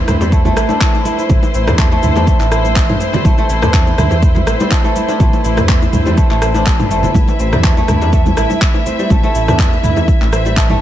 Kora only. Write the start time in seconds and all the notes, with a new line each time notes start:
Already playing: A3 E4
0.08 C4
0.21 G3
0.32 A3
0.45 A3
0.57 E4
0.70 D4
0.81 A3
1.05 E4
1.54 C4
1.67 G3
1.78 A3
1.92 A3
2.03 E4
2.16 D4
2.52 E4
3.00 C4
3.14 G3
3.25 A3
3.38 A3
3.50 E4
3.63 D4
3.74 A3
3.98 E4
4.47 C4
4.61 G3
4.71 A3
4.84 A3
4.96 E4
5.09 D4
5.20 A3
5.44 E4
5.93 C4
6.06 G3
6.17 A3
6.30 A3
6.42 C4
6.55 D4
6.66 G3
6.91 A3
7.40 C4
7.53 G3
7.64 A3
7.77 A3
7.89 E4
8.02 D4
8.13 A3
8.38 E4
8.86 C4
8.99 G3
9.11 A3
9.24 A3
9.35 E4
9.48 D4
9.84 E4
10.32 C4
10.46 G3
10.57 A3
10.70 A3